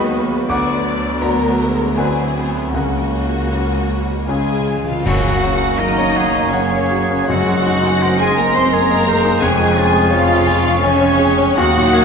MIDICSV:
0, 0, Header, 1, 14, 480
1, 0, Start_track
1, 0, Key_signature, 6, "major"
1, 0, Tempo, 727273
1, 322, Time_signature, 3, 2, 24, 8
1, 802, Tempo, 768246
1, 3202, Tempo, 731707
1, 4162, Tempo, 770218
1, 4642, Tempo, 709220
1, 6562, Tempo, 726392
1, 7830, End_track
2, 0, Start_track
2, 0, Title_t, "Flute section"
2, 0, Program_c, 0, 73
2, 3198, Note_on_c, 0, 85, 66
2, 4615, Note_off_c, 0, 85, 0
2, 4634, Note_on_c, 0, 84, 73
2, 6080, Note_on_c, 0, 85, 77
2, 6081, Note_off_c, 0, 84, 0
2, 7524, Note_off_c, 0, 85, 0
2, 7528, Note_on_c, 0, 87, 90
2, 7830, Note_off_c, 0, 87, 0
2, 7830, End_track
3, 0, Start_track
3, 0, Title_t, "Violin section"
3, 0, Program_c, 1, 48
3, 0, Note_on_c, 1, 66, 63
3, 309, Note_off_c, 1, 66, 0
3, 317, Note_on_c, 1, 66, 68
3, 553, Note_off_c, 1, 66, 0
3, 559, Note_on_c, 1, 62, 65
3, 1260, Note_off_c, 1, 62, 0
3, 1273, Note_on_c, 1, 64, 55
3, 1745, Note_on_c, 1, 66, 58
3, 1753, Note_off_c, 1, 64, 0
3, 2713, Note_on_c, 1, 80, 63
3, 2714, Note_off_c, 1, 66, 0
3, 2714, Note_on_c, 1, 65, 53
3, 3056, Note_off_c, 1, 80, 0
3, 3069, Note_off_c, 1, 65, 0
3, 3085, Note_on_c, 1, 77, 72
3, 3192, Note_on_c, 1, 78, 90
3, 3201, Note_off_c, 1, 77, 0
3, 3677, Note_off_c, 1, 78, 0
3, 3678, Note_on_c, 1, 75, 90
3, 4150, Note_on_c, 1, 73, 74
3, 4158, Note_off_c, 1, 75, 0
3, 4636, Note_off_c, 1, 73, 0
3, 4636, Note_on_c, 1, 78, 103
3, 5239, Note_off_c, 1, 78, 0
3, 5254, Note_on_c, 1, 80, 95
3, 5371, Note_on_c, 1, 82, 96
3, 5375, Note_off_c, 1, 80, 0
3, 5493, Note_off_c, 1, 82, 0
3, 5496, Note_on_c, 1, 84, 91
3, 5605, Note_on_c, 1, 82, 104
3, 5615, Note_off_c, 1, 84, 0
3, 6073, Note_on_c, 1, 80, 92
3, 6080, Note_off_c, 1, 82, 0
3, 6550, Note_on_c, 1, 77, 100
3, 6554, Note_off_c, 1, 80, 0
3, 7023, Note_on_c, 1, 73, 108
3, 7030, Note_off_c, 1, 77, 0
3, 7520, Note_off_c, 1, 73, 0
3, 7520, Note_on_c, 1, 78, 127
3, 7830, Note_off_c, 1, 78, 0
3, 7830, End_track
4, 0, Start_track
4, 0, Title_t, "Grand piano"
4, 0, Program_c, 2, 0
4, 0, Control_c, 2, 64, 127
4, 0, Note_on_c, 2, 39, 75
4, 0, Note_on_c, 2, 51, 67
4, 0, Note_on_c, 2, 63, 62
4, 0, Note_on_c, 2, 66, 59
4, 0, Note_on_c, 2, 71, 67
4, 0, Note_on_c, 2, 75, 79
4, 0, Note_on_c, 2, 77, 69
4, 0, Note_on_c, 2, 78, 72
4, 0, Note_on_c, 2, 83, 100
4, 0, Note_on_c, 2, 85, 81
4, 0, Note_on_c, 2, 87, 95
4, 297, Note_off_c, 2, 63, 0
4, 297, Note_off_c, 2, 66, 0
4, 297, Note_off_c, 2, 83, 0
4, 299, Note_off_c, 2, 39, 0
4, 299, Note_off_c, 2, 71, 0
4, 300, Note_off_c, 2, 51, 0
4, 300, Note_off_c, 2, 75, 0
4, 322, Note_on_c, 2, 38, 76
4, 322, Note_on_c, 2, 50, 67
4, 326, Note_on_c, 2, 86, 91
4, 334, Control_c, 2, 64, 0
4, 336, Note_off_c, 2, 78, 0
4, 336, Note_on_c, 2, 78, 73
4, 337, Note_off_c, 2, 77, 0
4, 337, Note_off_c, 2, 85, 0
4, 340, Note_off_c, 2, 87, 0
4, 424, Control_c, 2, 64, 127
4, 778, Note_off_c, 2, 86, 0
4, 783, Note_off_c, 2, 78, 0
4, 805, Note_on_c, 2, 82, 80
4, 810, Note_on_c, 2, 59, 55
4, 811, Note_on_c, 2, 66, 54
4, 814, Note_on_c, 2, 74, 59
4, 1250, Note_off_c, 2, 38, 0
4, 1250, Note_off_c, 2, 50, 0
4, 1251, Note_off_c, 2, 82, 0
4, 1254, Note_off_c, 2, 59, 0
4, 1254, Note_off_c, 2, 66, 0
4, 1256, Note_off_c, 2, 74, 0
4, 1270, Note_on_c, 2, 60, 44
4, 1272, Note_on_c, 2, 38, 64
4, 1273, Note_on_c, 2, 50, 58
4, 1273, Note_on_c, 2, 66, 49
4, 1278, Note_on_c, 2, 74, 48
4, 1279, Note_on_c, 2, 80, 71
4, 1287, Control_c, 2, 64, 0
4, 1287, Note_on_c, 2, 71, 55
4, 1376, Control_c, 2, 64, 127
4, 1727, Note_off_c, 2, 60, 0
4, 1728, Note_off_c, 2, 66, 0
4, 1731, Note_off_c, 2, 74, 0
4, 1731, Note_off_c, 2, 80, 0
4, 1736, Note_off_c, 2, 71, 0
4, 1738, Note_off_c, 2, 38, 0
4, 1739, Note_off_c, 2, 50, 0
4, 1754, Note_on_c, 2, 49, 53
4, 1757, Note_on_c, 2, 37, 54
4, 1759, Note_on_c, 2, 78, 62
4, 1767, Control_c, 2, 64, 0
4, 1768, Note_on_c, 2, 70, 47
4, 1881, Control_c, 2, 64, 127
4, 2237, Note_off_c, 2, 70, 0
4, 2243, Note_on_c, 2, 61, 43
4, 2246, Note_on_c, 2, 70, 48
4, 2247, Note_on_c, 2, 66, 44
4, 2693, Note_off_c, 2, 49, 0
4, 2695, Note_off_c, 2, 37, 0
4, 2696, Note_off_c, 2, 61, 0
4, 2696, Note_off_c, 2, 78, 0
4, 2697, Note_off_c, 2, 66, 0
4, 2697, Note_off_c, 2, 70, 0
4, 2718, Note_on_c, 2, 49, 53
4, 2719, Note_on_c, 2, 61, 44
4, 2722, Note_on_c, 2, 37, 59
4, 2723, Note_on_c, 2, 65, 41
4, 2726, Note_on_c, 2, 68, 41
4, 2732, Control_c, 2, 64, 0
4, 2862, Control_c, 2, 64, 127
4, 3176, Note_off_c, 2, 61, 0
4, 3178, Note_off_c, 2, 65, 0
4, 3179, Note_off_c, 2, 68, 0
4, 3186, Note_off_c, 2, 49, 0
4, 3188, Note_off_c, 2, 37, 0
4, 3210, Note_on_c, 2, 42, 78
4, 3212, Control_c, 2, 64, 0
4, 3324, Control_c, 2, 64, 127
4, 3329, Note_on_c, 2, 49, 52
4, 3449, Note_on_c, 2, 61, 53
4, 3518, Note_off_c, 2, 49, 0
4, 3570, Note_on_c, 2, 66, 54
4, 3637, Note_off_c, 2, 61, 0
4, 3689, Note_on_c, 2, 70, 59
4, 3759, Note_off_c, 2, 66, 0
4, 3809, Note_on_c, 2, 73, 61
4, 3877, Note_off_c, 2, 70, 0
4, 3927, Note_on_c, 2, 78, 62
4, 3997, Note_off_c, 2, 73, 0
4, 4050, Note_on_c, 2, 82, 67
4, 4115, Note_off_c, 2, 78, 0
4, 4170, Note_on_c, 2, 78, 72
4, 4234, Note_off_c, 2, 82, 0
4, 4285, Note_on_c, 2, 73, 66
4, 4354, Note_off_c, 2, 78, 0
4, 4405, Note_on_c, 2, 66, 59
4, 4476, Note_off_c, 2, 73, 0
4, 4528, Note_on_c, 2, 61, 54
4, 4597, Note_off_c, 2, 66, 0
4, 4620, Note_off_c, 2, 42, 0
4, 4645, Note_off_c, 2, 61, 0
4, 4648, Note_on_c, 2, 42, 77
4, 4653, Control_c, 2, 64, 0
4, 4768, Control_c, 2, 64, 127
4, 4775, Note_on_c, 2, 54, 55
4, 4896, Note_on_c, 2, 63, 58
4, 4968, Note_off_c, 2, 54, 0
4, 5020, Note_on_c, 2, 68, 62
4, 5088, Note_off_c, 2, 63, 0
4, 5137, Note_on_c, 2, 72, 68
4, 5209, Note_off_c, 2, 68, 0
4, 5261, Note_on_c, 2, 75, 67
4, 5328, Note_off_c, 2, 72, 0
4, 5381, Note_on_c, 2, 80, 68
4, 5450, Note_off_c, 2, 75, 0
4, 5503, Note_on_c, 2, 84, 72
4, 5570, Note_off_c, 2, 80, 0
4, 5619, Note_on_c, 2, 80, 73
4, 5690, Note_off_c, 2, 84, 0
4, 5733, Note_on_c, 2, 75, 76
4, 5806, Note_off_c, 2, 80, 0
4, 5850, Note_on_c, 2, 68, 68
4, 5921, Note_off_c, 2, 75, 0
4, 5968, Note_on_c, 2, 63, 63
4, 6038, Note_off_c, 2, 68, 0
4, 6061, Note_off_c, 2, 42, 0
4, 6082, Note_on_c, 2, 41, 86
4, 6085, Note_off_c, 2, 63, 0
4, 6098, Control_c, 2, 64, 0
4, 6189, Control_c, 2, 64, 127
4, 6198, Note_on_c, 2, 53, 64
4, 6318, Note_on_c, 2, 61, 68
4, 6390, Note_off_c, 2, 53, 0
4, 6435, Note_on_c, 2, 68, 64
4, 6511, Note_off_c, 2, 61, 0
4, 6547, Note_on_c, 2, 73, 70
4, 6629, Note_off_c, 2, 68, 0
4, 6670, Note_on_c, 2, 68, 75
4, 6743, Note_off_c, 2, 73, 0
4, 6787, Note_on_c, 2, 80, 79
4, 6864, Note_off_c, 2, 68, 0
4, 6909, Note_on_c, 2, 85, 80
4, 6983, Note_off_c, 2, 80, 0
4, 7030, Note_on_c, 2, 80, 86
4, 7104, Note_off_c, 2, 85, 0
4, 7145, Note_on_c, 2, 73, 84
4, 7227, Note_off_c, 2, 80, 0
4, 7266, Note_on_c, 2, 68, 77
4, 7349, Note_off_c, 2, 73, 0
4, 7393, Note_on_c, 2, 61, 72
4, 7471, Note_off_c, 2, 68, 0
4, 7498, Note_off_c, 2, 41, 0
4, 7520, Note_on_c, 2, 39, 94
4, 7521, Note_off_c, 2, 61, 0
4, 7539, Control_c, 2, 64, 0
4, 7638, Note_on_c, 2, 46, 76
4, 7657, Control_c, 2, 64, 127
4, 7758, Note_on_c, 2, 58, 70
4, 7829, Note_off_c, 2, 46, 0
4, 7830, Note_off_c, 2, 39, 0
4, 7830, Note_off_c, 2, 58, 0
4, 7830, End_track
5, 0, Start_track
5, 0, Title_t, "Oboe"
5, 0, Program_c, 3, 68
5, 3201, Note_on_c, 3, 66, 72
5, 3684, Note_on_c, 3, 70, 77
5, 3694, Note_off_c, 3, 66, 0
5, 3929, Note_on_c, 3, 68, 83
5, 3939, Note_off_c, 3, 70, 0
5, 4645, Note_off_c, 3, 68, 0
5, 4649, Note_on_c, 3, 66, 79
5, 5137, Note_on_c, 3, 70, 89
5, 5147, Note_off_c, 3, 66, 0
5, 5618, Note_on_c, 3, 68, 72
5, 5629, Note_off_c, 3, 70, 0
5, 5847, Note_off_c, 3, 68, 0
5, 5851, Note_on_c, 3, 72, 78
5, 6083, Note_on_c, 3, 73, 91
5, 6093, Note_off_c, 3, 72, 0
5, 6319, Note_on_c, 3, 65, 86
5, 6329, Note_off_c, 3, 73, 0
5, 7335, Note_off_c, 3, 65, 0
5, 7521, Note_on_c, 3, 66, 90
5, 7755, Note_on_c, 3, 68, 83
5, 7765, Note_off_c, 3, 66, 0
5, 7830, Note_off_c, 3, 68, 0
5, 7830, End_track
6, 0, Start_track
6, 0, Title_t, "Violin section"
6, 0, Program_c, 4, 48
6, 0, Note_on_c, 4, 71, 74
6, 316, Note_on_c, 4, 74, 84
6, 319, Note_off_c, 4, 71, 0
6, 790, Note_off_c, 4, 74, 0
6, 803, Note_on_c, 4, 70, 80
6, 1275, Note_off_c, 4, 70, 0
6, 1276, Note_on_c, 4, 68, 60
6, 1750, Note_on_c, 4, 66, 62
6, 1755, Note_off_c, 4, 68, 0
6, 2717, Note_off_c, 4, 66, 0
6, 2720, Note_on_c, 4, 68, 56
6, 3060, Note_off_c, 4, 68, 0
6, 3086, Note_on_c, 4, 65, 58
6, 3202, Note_off_c, 4, 65, 0
6, 3204, Note_on_c, 4, 66, 76
6, 3682, Note_on_c, 4, 63, 84
6, 3684, Note_off_c, 4, 66, 0
6, 4151, Note_off_c, 4, 63, 0
6, 4164, Note_on_c, 4, 61, 66
6, 4643, Note_off_c, 4, 61, 0
6, 4648, Note_on_c, 4, 66, 82
6, 5246, Note_off_c, 4, 66, 0
6, 5259, Note_on_c, 4, 68, 73
6, 5377, Note_off_c, 4, 68, 0
6, 5383, Note_on_c, 4, 70, 82
6, 5499, Note_off_c, 4, 70, 0
6, 5503, Note_on_c, 4, 72, 84
6, 5618, Note_off_c, 4, 72, 0
6, 5626, Note_on_c, 4, 70, 95
6, 6081, Note_off_c, 4, 70, 0
6, 6093, Note_on_c, 4, 68, 78
6, 6565, Note_off_c, 4, 68, 0
6, 6565, Note_on_c, 4, 65, 95
6, 7028, Note_off_c, 4, 65, 0
6, 7028, Note_on_c, 4, 61, 92
6, 7512, Note_off_c, 4, 61, 0
6, 7524, Note_on_c, 4, 66, 109
6, 7830, Note_off_c, 4, 66, 0
6, 7830, End_track
7, 0, Start_track
7, 0, Title_t, "Clarinet"
7, 0, Program_c, 5, 71
7, 2713, Note_on_c, 5, 68, 56
7, 3090, Note_on_c, 5, 65, 57
7, 3099, Note_off_c, 5, 68, 0
7, 3202, Note_off_c, 5, 65, 0
7, 3206, Note_on_c, 5, 66, 83
7, 3693, Note_on_c, 5, 63, 75
7, 3703, Note_off_c, 5, 66, 0
7, 4160, Note_on_c, 5, 61, 65
7, 4169, Note_off_c, 5, 63, 0
7, 4628, Note_off_c, 5, 61, 0
7, 4632, Note_on_c, 5, 66, 80
7, 5252, Note_on_c, 5, 68, 73
7, 5262, Note_off_c, 5, 66, 0
7, 5366, Note_off_c, 5, 68, 0
7, 5370, Note_on_c, 5, 70, 88
7, 5485, Note_off_c, 5, 70, 0
7, 5489, Note_on_c, 5, 72, 83
7, 5603, Note_off_c, 5, 72, 0
7, 5607, Note_on_c, 5, 70, 84
7, 6076, Note_on_c, 5, 68, 77
7, 6086, Note_off_c, 5, 70, 0
7, 6559, Note_on_c, 5, 65, 88
7, 6569, Note_off_c, 5, 68, 0
7, 6868, Note_off_c, 5, 65, 0
7, 7031, Note_on_c, 5, 61, 98
7, 7525, Note_on_c, 5, 66, 114
7, 7535, Note_off_c, 5, 61, 0
7, 7830, Note_off_c, 5, 66, 0
7, 7830, End_track
8, 0, Start_track
8, 0, Title_t, "Viola section"
8, 0, Program_c, 6, 48
8, 0, Note_on_c, 6, 56, 67
8, 0, Note_on_c, 6, 59, 63
8, 314, Note_off_c, 6, 59, 0
8, 323, Note_off_c, 6, 56, 0
8, 324, Note_on_c, 6, 54, 63
8, 325, Note_on_c, 6, 59, 66
8, 794, Note_off_c, 6, 54, 0
8, 801, Note_on_c, 6, 54, 64
8, 1032, Note_off_c, 6, 54, 0
8, 1036, Note_on_c, 6, 56, 59
8, 1258, Note_off_c, 6, 59, 0
8, 1274, Note_off_c, 6, 56, 0
8, 1276, Note_on_c, 6, 57, 60
8, 1278, Note_on_c, 6, 60, 57
8, 1513, Note_off_c, 6, 57, 0
8, 1513, Note_on_c, 6, 59, 54
8, 1749, Note_off_c, 6, 59, 0
8, 1755, Note_on_c, 6, 58, 48
8, 1755, Note_on_c, 6, 61, 51
8, 1756, Note_off_c, 6, 60, 0
8, 2700, Note_off_c, 6, 61, 0
8, 2719, Note_off_c, 6, 58, 0
8, 2720, Note_on_c, 6, 56, 46
8, 2723, Note_on_c, 6, 61, 44
8, 3066, Note_off_c, 6, 61, 0
8, 3072, Note_off_c, 6, 56, 0
8, 3202, Note_on_c, 6, 58, 68
8, 3204, Note_on_c, 6, 61, 63
8, 4617, Note_off_c, 6, 58, 0
8, 4617, Note_off_c, 6, 61, 0
8, 4641, Note_on_c, 6, 56, 71
8, 4641, Note_on_c, 6, 60, 70
8, 6057, Note_off_c, 6, 60, 0
8, 6082, Note_on_c, 6, 61, 75
8, 7498, Note_off_c, 6, 61, 0
8, 7500, Note_off_c, 6, 56, 0
8, 7525, Note_on_c, 6, 58, 89
8, 7527, Note_on_c, 6, 63, 86
8, 7830, Note_off_c, 6, 58, 0
8, 7830, Note_off_c, 6, 63, 0
8, 7830, End_track
9, 0, Start_track
9, 0, Title_t, "Bassoon"
9, 0, Program_c, 7, 70
9, 3197, Note_on_c, 7, 58, 61
9, 4614, Note_off_c, 7, 58, 0
9, 4635, Note_on_c, 7, 56, 68
9, 7307, Note_off_c, 7, 56, 0
9, 7520, Note_on_c, 7, 58, 86
9, 7830, Note_off_c, 7, 58, 0
9, 7830, End_track
10, 0, Start_track
10, 0, Title_t, "French horn section"
10, 0, Program_c, 8, 60
10, 0, Note_on_c, 8, 54, 64
10, 0, Note_on_c, 8, 59, 71
10, 1251, Note_off_c, 8, 59, 0
10, 1276, Note_on_c, 8, 60, 57
10, 1747, Note_off_c, 8, 54, 0
10, 1754, Note_on_c, 8, 54, 57
10, 1755, Note_off_c, 8, 60, 0
10, 1755, Note_on_c, 8, 58, 55
10, 2610, Note_off_c, 8, 54, 0
10, 2610, Note_off_c, 8, 58, 0
10, 2716, Note_on_c, 8, 56, 62
10, 2717, Note_on_c, 8, 61, 44
10, 2720, Note_on_c, 8, 53, 45
10, 2985, Note_off_c, 8, 61, 0
10, 2992, Note_off_c, 8, 53, 0
10, 3058, Note_off_c, 8, 56, 0
10, 3081, Note_on_c, 8, 53, 63
10, 3199, Note_off_c, 8, 53, 0
10, 3199, Note_on_c, 8, 54, 78
10, 3673, Note_on_c, 8, 51, 77
10, 3681, Note_off_c, 8, 54, 0
10, 4155, Note_on_c, 8, 49, 72
10, 4156, Note_off_c, 8, 51, 0
10, 4638, Note_off_c, 8, 49, 0
10, 4642, Note_on_c, 8, 54, 92
10, 5255, Note_off_c, 8, 54, 0
10, 5260, Note_on_c, 8, 56, 79
10, 5375, Note_off_c, 8, 56, 0
10, 5377, Note_on_c, 8, 58, 89
10, 5489, Note_on_c, 8, 60, 84
10, 5494, Note_off_c, 8, 58, 0
10, 5611, Note_on_c, 8, 58, 103
10, 5612, Note_off_c, 8, 60, 0
10, 6083, Note_off_c, 8, 58, 0
10, 6086, Note_on_c, 8, 56, 84
10, 6561, Note_off_c, 8, 56, 0
10, 6564, Note_on_c, 8, 53, 91
10, 7036, Note_on_c, 8, 49, 90
10, 7037, Note_off_c, 8, 53, 0
10, 7416, Note_off_c, 8, 49, 0
10, 7528, Note_on_c, 8, 54, 113
10, 7830, Note_off_c, 8, 54, 0
10, 7830, End_track
11, 0, Start_track
11, 0, Title_t, "Timpani"
11, 0, Program_c, 10, 47
11, 1754, Note_on_c, 10, 49, 65
11, 2453, Note_off_c, 10, 49, 0
11, 2871, Note_on_c, 10, 49, 41
11, 2910, Note_off_c, 10, 49, 0
11, 2918, Note_on_c, 10, 49, 44
11, 2963, Note_off_c, 10, 49, 0
11, 2971, Note_on_c, 10, 49, 54
11, 3012, Note_off_c, 10, 49, 0
11, 3020, Note_on_c, 10, 49, 55
11, 3061, Note_off_c, 10, 49, 0
11, 3069, Note_on_c, 10, 49, 65
11, 3107, Note_off_c, 10, 49, 0
11, 3115, Note_on_c, 10, 49, 83
11, 3163, Note_off_c, 10, 49, 0
11, 3201, Note_on_c, 10, 42, 91
11, 3895, Note_off_c, 10, 42, 0
11, 4644, Note_on_c, 10, 42, 89
11, 5349, Note_off_c, 10, 42, 0
11, 7830, End_track
12, 0, Start_track
12, 0, Title_t, "Cello section"
12, 0, Program_c, 11, 48
12, 0, Note_on_c, 11, 39, 70
12, 318, Note_on_c, 11, 38, 68
12, 321, Note_off_c, 11, 39, 0
12, 1751, Note_on_c, 11, 37, 47
12, 1752, Note_off_c, 11, 38, 0
12, 3044, Note_off_c, 11, 37, 0
12, 3198, Note_on_c, 11, 42, 62
12, 6056, Note_off_c, 11, 42, 0
12, 6079, Note_on_c, 11, 41, 76
12, 7518, Note_on_c, 11, 39, 79
12, 7524, Note_off_c, 11, 41, 0
12, 7830, Note_off_c, 11, 39, 0
12, 7830, End_track
13, 0, Start_track
13, 0, Title_t, "Double bass section"
13, 0, Program_c, 12, 48
13, 0, Note_on_c, 12, 39, 71
13, 322, Note_off_c, 12, 39, 0
13, 322, Note_on_c, 12, 38, 63
13, 1754, Note_off_c, 12, 38, 0
13, 1755, Note_on_c, 12, 37, 53
13, 3047, Note_off_c, 12, 37, 0
13, 3200, Note_on_c, 12, 30, 66
13, 6057, Note_off_c, 12, 30, 0
13, 6083, Note_on_c, 12, 29, 74
13, 7523, Note_on_c, 12, 39, 88
13, 7525, Note_off_c, 12, 29, 0
13, 7830, Note_off_c, 12, 39, 0
13, 7830, End_track
14, 0, Start_track
14, 0, Title_t, "Drums"
14, 3203, Note_on_c, 9, 35, 68
14, 3203, Note_on_c, 9, 49, 71
14, 3269, Note_off_c, 9, 35, 0
14, 3269, Note_off_c, 9, 49, 0
14, 7830, End_track
0, 0, End_of_file